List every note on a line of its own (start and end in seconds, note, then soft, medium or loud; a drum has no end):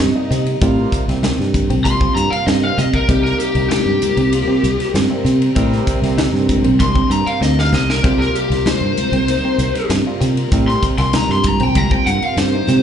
0.00 0.12 G2 medium
0.00 12.82 C3 medium
0.00 0.15 C4 medium
0.00 12.82 C4 medium
0.00 12.82 A#4 medium
0.00 0.58 D#5 medium
0.00 snare loud
0.00 hi-hat pedal medium
0.00 ride medium
0.00 high conga medium
0.15 0.57 C3 medium
0.15 0.57 G3 medium
0.15 0.58 A#3 medium
0.15 0.57 D#4 medium
0.31 0.54 C3 medium
0.31 0.46 C4 medium
0.31 snare soft
0.31 hi-hat pedal medium
0.31 ride medium
0.46 ride medium
0.61 0.85 A2 medium
0.61 1.04 C3 loud
0.61 1.04 G3 medium
0.61 0.77 C4 medium
0.61 1.04 F4 loud
0.61 1.04 A#4 loud
0.61 kick loud
0.61 hi-hat pedal medium
0.61 ride medium
0.61 muted conga soft
0.92 kick medium
0.92 hi-hat pedal medium
0.92 ride medium
1.08 1.32 C2 medium
1.08 1.79 C3 medium
1.08 1.79 G3 medium
1.08 1.79 A#3 medium
1.08 1.79 C4 medium
1.08 snare soft
1.08 ride medium
1.23 1.39 D#4 medium
1.23 snare loud
1.23 hi-hat pedal medium
1.23 ride medium
1.23 high conga medium
1.39 1.71 G2 medium
1.39 snare soft
1.54 kick medium
1.54 hi-hat pedal medium
1.54 ride medium
1.54 muted conga soft
1.54 high conga medium
1.70 2.05 C2 medium
1.70 1.86 C4 medium
1.70 ride medium
1.84 2.56 C3 medium
1.84 2.56 G3 medium
1.84 2.56 A#3 medium
1.84 2.56 F4 medium
1.84 2.15 C6 medium
1.84 kick medium
1.84 hi-hat pedal medium
1.84 ride medium
1.84 muted conga soft
1.84 high conga medium
1.84 low conga medium
2.01 2.17 C4 medium
2.01 kick medium
2.15 2.28 G2 medium
2.15 2.31 A#5 medium
2.15 hi-hat pedal medium
2.15 ride medium
2.15 muted conga soft
2.31 2.46 F5 medium
2.31 muted fingered electric bass stroke soft
2.31 ride medium
2.46 2.71 G2 medium
2.46 2.63 C4 medium
2.46 2.63 D#5 medium
2.46 snare loud
2.46 hi-hat pedal medium
2.46 ride medium
2.62 3.05 C3 medium
2.62 3.05 G3 medium
2.62 3.05 A#3 medium
2.62 3.05 C4 medium
2.62 2.78 F5 medium
2.78 2.90 C3 medium
2.78 2.93 C4 medium
2.78 2.93 D#5 medium
2.78 snare soft
2.78 hi-hat pedal medium
2.78 ride medium
2.78 high conga medium
2.94 3.09 A#4 medium
2.94 kick medium
2.94 ride medium
3.09 3.32 C2 medium
3.09 3.51 C3 medium
3.09 3.51 G3 medium
3.09 3.51 A#3 medium
3.09 3.24 C4 medium
3.09 3.51 D#4 loud
3.09 3.23 G4 medium
3.09 kick loud
3.09 hi-hat pedal medium
3.09 ride medium
3.09 muted conga soft
3.24 3.38 A#4 medium
3.24 snare soft
3.38 3.68 G4 medium
3.38 hi-hat pedal medium
3.38 ride medium
3.55 3.67 C2 medium
3.55 4.26 C3 medium
3.55 4.26 G3 medium
3.55 4.26 A#3 medium
3.55 4.26 D#4 medium
3.55 ride medium
3.69 3.86 D#4 medium
3.69 4.90 G4 medium
3.69 snare loud
3.69 hi-hat pedal medium
3.69 ride medium
3.69 high conga medium
3.86 3.98 G2 medium
4.02 hi-hat pedal medium
4.02 ride medium
4.02 muted conga soft
4.02 high conga medium
4.17 4.41 C2 medium
4.17 4.33 C4 medium
4.17 ride medium
4.32 5.04 C3 medium
4.32 5.04 G3 medium
4.32 5.04 A#3 medium
4.32 5.04 F4 medium
4.32 hi-hat pedal medium
4.32 ride medium
4.32 muted conga soft
4.48 4.64 C4 medium
4.48 muted fingered electric bass stroke soft
4.63 4.75 C2 medium
4.63 hi-hat pedal medium
4.63 ride medium
4.63 muted conga soft
4.80 snare soft
4.80 ride medium
4.94 5.06 G2 medium
4.94 5.10 C4 medium
4.94 snare loud
4.94 hi-hat pedal medium
4.94 ride medium
4.94 high conga medium
5.10 5.52 C3 medium
5.10 5.52 G3 medium
5.10 5.52 A#3 medium
5.10 5.52 C4 medium
5.25 5.49 C3 medium
5.25 5.41 C4 medium
5.25 snare soft
5.25 hi-hat pedal medium
5.25 ride medium
5.42 ride medium
5.55 5.80 A2 medium
5.55 5.99 C3 loud
5.55 5.99 G3 loud
5.55 5.71 C4 medium
5.55 5.99 C4 loud
5.55 5.99 A#4 loud
5.55 kick loud
5.55 hi-hat pedal medium
5.55 ride medium
5.73 snare soft
5.87 kick medium
5.87 hi-hat pedal medium
5.87 ride medium
6.02 6.26 C2 medium
6.02 6.74 C3 medium
6.02 6.74 G3 medium
6.02 6.74 A#3 medium
6.02 6.74 C4 medium
6.02 snare soft
6.02 ride medium
6.18 6.34 D#4 medium
6.18 snare loud
6.18 hi-hat pedal medium
6.18 ride medium
6.18 high conga medium
6.18 low conga medium
6.33 6.66 G2 medium
6.33 snare soft
6.49 kick medium
6.49 hi-hat pedal medium
6.49 ride medium
6.49 muted conga soft
6.49 high conga medium
6.64 7.00 C2 medium
6.64 6.80 C4 medium
6.64 ride medium
6.80 7.51 C3 medium
6.80 7.51 G3 medium
6.80 7.51 A#3 medium
6.80 7.51 D4 medium
6.80 7.11 C6 medium
6.80 kick medium
6.80 hi-hat pedal medium
6.80 ride medium
6.80 muted conga soft
6.80 high conga medium
6.80 low conga medium
6.95 7.11 C4 medium
6.95 kick medium
7.10 7.22 G2 medium
7.10 7.27 A#5 medium
7.10 hi-hat pedal medium
7.10 ride medium
7.10 muted conga soft
7.26 7.42 F5 medium
7.26 muted fingered electric bass stroke soft
7.26 ride medium
7.41 7.69 D2 medium
7.41 7.57 C4 medium
7.41 7.59 D#5 medium
7.41 snare medium
7.41 hi-hat pedal medium
7.59 8.01 C3 medium
7.59 8.01 G3 medium
7.59 8.01 A#3 medium
7.59 8.01 D#4 medium
7.59 7.74 F5 medium
7.59 snare medium
7.72 8.01 C2 medium
7.72 7.89 C4 medium
7.72 7.89 D#5 medium
7.72 snare medium
7.72 hi-hat pedal medium
7.72 high conga medium
7.90 8.04 A#4 medium
7.90 snare medium
8.03 8.28 C2 medium
8.03 8.47 C3 medium
8.03 8.47 G3 medium
8.03 8.47 A#3 medium
8.03 8.19 C4 medium
8.03 8.47 F4 medium
8.03 8.19 G4 medium
8.03 kick loud
8.03 hi-hat pedal medium
8.03 ride medium
8.03 muted conga soft
8.20 8.35 A#4 medium
8.20 snare soft
8.35 8.65 G4 medium
8.35 hi-hat pedal medium
8.35 ride medium
8.50 8.62 C2 medium
8.50 9.22 C3 medium
8.50 9.22 G3 medium
8.50 9.22 A#3 medium
8.50 9.22 F4 medium
8.50 snare soft
8.50 ride medium
8.66 8.82 D#4 medium
8.66 9.87 C5 medium
8.66 snare loud
8.66 hi-hat pedal medium
8.66 ride medium
8.66 high conga medium
8.81 8.93 G2 medium
8.97 hi-hat pedal medium
8.97 ride medium
8.97 muted conga soft
8.97 high conga medium
9.12 9.36 C2 medium
9.12 9.29 C4 medium
9.12 ride medium
9.28 9.99 C3 medium
9.28 9.99 G3 medium
9.28 9.99 A#3 medium
9.28 9.99 D#4 medium
9.28 hi-hat pedal medium
9.28 ride medium
9.28 muted conga soft
9.43 9.60 C4 medium
9.43 muted fingered electric bass stroke soft
9.58 9.71 C2 medium
9.58 hi-hat pedal medium
9.58 ride medium
9.58 muted conga soft
9.75 snare soft
9.75 ride medium
9.89 10.02 G2 medium
9.89 10.05 C4 medium
9.89 snare loud
9.89 hi-hat pedal medium
9.89 ride medium
9.89 high conga medium
10.07 10.48 C3 medium
10.07 10.49 G3 medium
10.07 10.48 A#3 medium
10.07 10.49 F4 medium
10.21 10.45 C3 medium
10.21 10.36 C4 medium
10.21 snare soft
10.21 hi-hat pedal medium
10.21 ride medium
10.37 ride medium
10.52 10.76 A2 medium
10.52 10.95 C3 medium
10.52 10.95 G3 medium
10.52 10.68 C4 medium
10.52 10.95 C4 loud
10.52 10.95 A#4 medium
10.52 kick loud
10.52 hi-hat pedal medium
10.52 ride medium
10.52 muted conga soft
10.68 10.83 C6 medium
10.68 snare soft
10.83 kick medium
10.83 hi-hat pedal medium
10.83 ride medium
10.98 11.22 C2 medium
10.98 11.69 C3 medium
10.98 11.69 G3 medium
10.98 11.69 A#3 medium
10.98 11.69 F4 medium
10.98 11.15 C6 medium
10.98 snare soft
10.98 ride medium
11.13 11.29 D#4 medium
11.13 11.30 A#5 medium
11.13 snare loud
11.13 hi-hat pedal medium
11.13 ride medium
11.13 high conga medium
11.29 11.62 G2 medium
11.29 11.46 C6 medium
11.29 snare soft
11.43 kick medium
11.43 hi-hat pedal medium
11.43 ride medium
11.43 muted conga soft
11.43 high conga medium
11.47 11.63 A#5 medium
11.60 11.96 C2 medium
11.60 11.76 C4 medium
11.60 11.77 G5 medium
11.60 ride medium
11.75 12.46 C3 medium
11.75 12.46 G3 medium
11.75 12.46 A#3 medium
11.75 12.46 F4 medium
11.75 11.91 A#5 medium
11.75 kick medium
11.75 hi-hat pedal medium
11.75 ride medium
11.75 muted conga soft
11.75 high conga medium
11.75 low conga medium
11.91 12.07 C4 medium
11.91 12.06 G5 medium
11.91 kick medium
12.06 12.19 G2 medium
12.06 12.23 F#5 medium
12.06 hi-hat pedal medium
12.06 ride medium
12.22 12.38 F5 medium
12.22 muted fingered electric bass stroke soft
12.22 ride medium
12.37 12.61 G2 loud
12.37 12.54 C4 medium
12.37 12.82 C5 loud
12.37 snare loud
12.37 hi-hat pedal medium
12.37 ride medium
12.53 12.82 C3 medium
12.53 12.82 G3 medium
12.53 12.82 A#3 medium
12.53 12.82 D#4 medium
12.68 12.80 C3 medium
12.68 12.82 C4 medium
12.68 snare soft
12.68 hi-hat pedal medium
12.68 ride medium
12.68 high conga medium